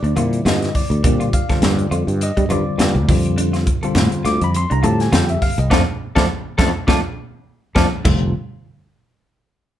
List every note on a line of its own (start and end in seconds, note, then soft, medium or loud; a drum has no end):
0.00 0.13 D2 medium
0.00 0.13 D4 medium
0.00 0.43 D5 medium
0.04 closed hi-hat soft
0.16 0.39 A#2 medium
0.16 0.81 D3 medium
0.16 0.82 G3 medium
0.16 0.82 C4 medium
0.16 0.82 E4 medium
0.16 0.37 F4 medium
0.16 closed hi-hat medium
0.16 high conga medium
0.33 closed hi-hat soft
0.45 0.68 G2 medium
0.45 0.66 F4 medium
0.45 0.75 D#5 medium
0.45 snare loud
0.45 closed hi-hat medium
0.45 high conga medium
0.62 snare soft
0.62 closed hi-hat soft
0.75 1.59 D5 medium
0.75 kick medium
0.75 open hi-hat medium
0.90 1.01 D2 medium
0.90 closed hi-hat soft
1.03 1.27 A#2 medium
1.03 1.36 D3 medium
1.03 1.36 G3 medium
1.03 1.37 C4 medium
1.03 1.15 D4 medium
1.03 1.37 G4 medium
1.03 kick loud
1.03 closed hi-hat medium
1.20 1.41 F4 medium
1.20 closed hi-hat soft
1.33 1.62 F5 medium
1.33 kick medium
1.33 closed hi-hat medium
1.33 muted conga soft
1.49 2.23 D3 medium
1.49 2.23 G3 medium
1.49 2.23 C4 medium
1.49 2.24 F4 medium
1.49 1.70 A4 medium
1.49 kick medium
1.49 snare soft
1.49 closed hi-hat soft
1.62 1.85 G2 medium
1.62 2.18 D5 medium
1.62 snare loud
1.62 closed hi-hat medium
1.62 high conga medium
1.79 closed hi-hat soft
1.91 2.04 F2 medium
1.91 2.12 F4 medium
1.91 closed hi-hat medium
1.91 muted conga soft
2.07 2.31 G2 medium
2.07 closed hi-hat soft
2.21 2.50 D#5 loud
2.21 closed hi-hat medium
2.21 muted conga soft
2.37 2.47 G3 medium
2.37 2.46 D4 medium
2.37 kick medium
2.37 closed hi-hat soft
2.49 2.62 G2 medium
2.49 3.07 D3 medium
2.49 3.08 G3 medium
2.49 3.08 C4 medium
2.49 2.71 F4 medium
2.49 3.09 F4 medium
2.49 3.34 D5 medium
2.49 closed hi-hat medium
2.49 high conga medium
2.78 2.96 G2 medium
2.78 2.99 F4 medium
2.78 snare loud
2.78 closed hi-hat medium
2.78 high conga medium
2.95 3.05 D2 medium
3.08 3.67 F2 medium
3.08 3.67 D3 medium
3.08 3.67 G3 medium
3.08 3.67 C4 medium
3.08 3.68 F4 medium
3.08 kick loud
3.08 open hi-hat medium
3.08 low conga medium
3.25 closed hi-hat soft
3.38 3.49 D4 medium
3.38 closed hi-hat medium
3.38 muted conga soft
3.53 3.74 F4 medium
3.53 snare soft
3.53 closed hi-hat soft
3.66 kick medium
3.66 closed hi-hat medium
3.66 muted conga soft
3.82 4.57 D3 medium
3.82 4.57 G3 medium
3.82 4.57 C4 medium
3.82 4.58 F4 medium
3.82 4.03 A4 medium
3.82 muted fretless electric bass stroke soft
3.82 closed hi-hat soft
3.95 4.08 A2 medium
3.95 snare loud
3.95 closed hi-hat medium
3.95 high conga medium
4.12 muted fretless electric bass stroke soft
4.12 closed hi-hat soft
4.25 4.38 D2 medium
4.25 4.45 F4 medium
4.25 4.41 D6 loud
4.25 snare soft
4.25 closed hi-hat medium
4.25 muted conga soft
4.41 4.65 F2 medium
4.41 4.55 B5 loud
4.41 closed hi-hat soft
4.54 4.71 C6 loud
4.54 closed hi-hat medium
4.54 muted conga soft
4.70 4.81 C2 medium
4.70 4.79 D4 medium
4.70 4.84 A#5 loud
4.70 closed hi-hat soft
4.83 5.07 A2 medium
4.83 5.49 D3 medium
4.83 5.49 G3 medium
4.83 5.49 C4 medium
4.83 5.04 F4 medium
4.83 5.49 G4 medium
4.83 4.99 A5 loud
4.83 closed hi-hat medium
4.83 high conga medium
5.00 5.13 G#5 medium
5.00 snare soft
5.00 closed hi-hat soft
5.12 5.36 F2 medium
5.12 5.33 F4 medium
5.12 5.29 G5 medium
5.12 snare loud
5.12 closed hi-hat medium
5.12 high conga medium
5.29 5.42 E5 medium
5.29 closed hi-hat soft
5.42 5.58 F5 loud
5.42 kick medium
5.42 open hi-hat medium
5.58 5.68 C2 loud
5.58 5.71 D#5 medium
5.58 closed hi-hat soft
5.70 5.83 F2 medium
5.70 5.81 F3 loud
5.70 5.81 A3 medium
5.70 5.81 C4 loud
5.70 5.81 D4 medium
5.70 5.81 F4 medium
5.70 5.81 A4 medium
5.70 5.82 D5 medium
5.70 5.81 F5 medium
5.70 5.82 A5 medium
5.70 kick medium
5.70 snare medium
5.70 high conga loud
6.15 6.26 F2 medium
6.15 6.25 F3 medium
6.15 6.25 A3 loud
6.15 6.25 C4 loud
6.15 6.24 D4 medium
6.15 6.24 F4 medium
6.15 6.24 A4 loud
6.15 6.24 D5 medium
6.15 6.24 F5 loud
6.15 6.25 A5 loud
6.15 kick medium
6.15 snare medium
6.15 high conga medium
6.58 6.71 F2 loud
6.58 6.69 F3 medium
6.58 6.69 A3 loud
6.58 6.69 C4 medium
6.58 6.69 D4 medium
6.58 6.69 F4 medium
6.58 6.69 A4 medium
6.58 6.69 D5 medium
6.58 6.69 F5 medium
6.58 6.69 A5 loud
6.58 kick medium
6.58 snare medium
6.58 high conga loud
6.87 7.00 F2 medium
6.87 6.99 F3 medium
6.87 6.99 A3 medium
6.87 6.98 C4 medium
6.87 6.98 D4 medium
6.87 6.98 F4 medium
6.87 6.98 A4 medium
6.87 6.99 D5 medium
6.87 6.99 F5 medium
6.87 6.99 A5 medium
6.87 kick medium
6.87 snare medium
6.87 high conga medium
7.75 7.88 F2 medium
7.75 7.86 F3 medium
7.75 7.86 A3 medium
7.75 7.86 C4 loud
7.75 7.86 D4 medium
7.75 7.86 F4 medium
7.75 7.86 A4 medium
7.75 7.86 D5 loud
7.75 7.86 F5 loud
7.75 7.86 A5 medium
7.75 kick medium
7.75 snare loud
7.75 high conga loud
8.05 8.32 F1 medium
8.05 8.33 D3 medium
8.05 8.32 G3 medium
8.05 8.32 C4 medium
8.05 8.22 F4 medium
8.05 8.32 F4 medium
8.05 kick loud
8.05 crash medium
8.05 muted conga medium